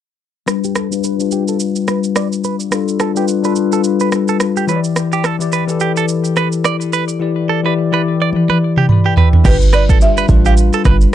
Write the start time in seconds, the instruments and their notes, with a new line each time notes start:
0.46 tine electric piano G3 D4 F4 B4, cross-stick, shaker
0.64 clean electric guitar G4, shaker
0.76 clean electric guitar A4, cross-stick, shaker
0.91 tine electric piano G3 D4 F4 B4, shaker
1.04 clean electric guitar B4, shaker
1.19 tine electric piano G3 D4 F4 B4, shaker
1.31 clean electric guitar G4, shaker
1.48 clean electric guitar A4, shaker
1.60 shaker
1.76 shaker
1.88 clean electric guitar B4, cross-stick, shaker
2.04 shaker
2.16 clean electric guitar D5, cross-stick, shaker
2.32 shaker
2.44 clean electric guitar B4, shaker
2.60 shaker
2.71 tine electric piano G3 D4 F4 A4, cross-stick, shaker
2.88 shaker
3.00 clean electric guitar A4, cross-stick, shaker
3.15 tine electric piano G3 D4 F4 B4, clean electric guitar G4, shaker
3.28 shaker
3.43 tine electric piano G3 D4 F4 A4, clean electric guitar B4, shaker
3.52 tine electric piano B4, shaker
3.72 clean electric guitar A4, shaker
3.84 shaker
4.00 clean electric guitar B4, shaker
4.12 cross-stick, shaker
4.28 clean electric guitar A4, shaker
4.40 cross-stick, shaker
4.57 clean electric guitar G4, shaker
4.67 tine electric piano E3 E4 G4 C#5, clean electric guitar B4, shaker
4.76 tine electric piano D5
4.84 shaker
4.96 cross-stick, shaker
5.13 clean electric guitar G4, shaker
5.24 clean electric guitar A4, cross-stick, shaker
5.39 tine electric piano E3 E4 G4 D5, shaker
5.52 clean electric guitar B4, shaker
5.67 tine electric piano E3 E4 G4 A4, shaker
5.80 clean electric guitar G4, shaker
5.97 clean electric guitar A4, shaker
6.08 shaker
6.24 shaker
6.36 clean electric guitar B4, cross-stick, shaker
6.52 shaker
6.64 clean electric guitar D5, cross-stick, shaker
6.81 shaker
6.93 clean electric guitar B4, shaker
7.09 shaker
7.19 tine electric piano E3 E4 G4 D5
7.49 clean electric guitar A4
7.64 tine electric piano E3 E4 G4 D5, clean electric guitar B4
7.92 tine electric piano E3 E4 G4 D5, clean electric guitar B4
8.22 clean electric guitar D5
8.33 high tom
8.49 clean electric guitar B4, high tom
8.77 clean electric guitar G4, mid tom
8.89 tine electric piano D5 B5, mid tom
9.05 clean electric guitar G4, tine electric piano B4 G5
9.17 tine electric piano G4 E5, clean electric guitar B4, floor tom
9.33 tine electric piano D4 B4, floor tom
9.44 808-style bass G1, tine electric piano G3 D4 F4 B4, clean electric guitar G4, marimba B4, kick, cross-stick, crash, shaker
9.61 shaker
9.73 clean electric guitar B4, marimba D5, cross-stick, shaker
9.89 clean electric guitar A4, kick, shaker
10.00 tine electric piano G3 D4 F4 G4, marimba E5, shaker
10.17 clean electric guitar B4, shaker
10.28 808-style bass A1, tine electric piano G3 D4 F4 B4, kick, shaker
10.45 clean electric guitar G4, marimba F5, shaker
10.57 shaker
10.73 clean electric guitar A4, shaker
10.85 808-style bass G1, clean electric guitar B4, kick, cross-stick, shaker
11.01 shaker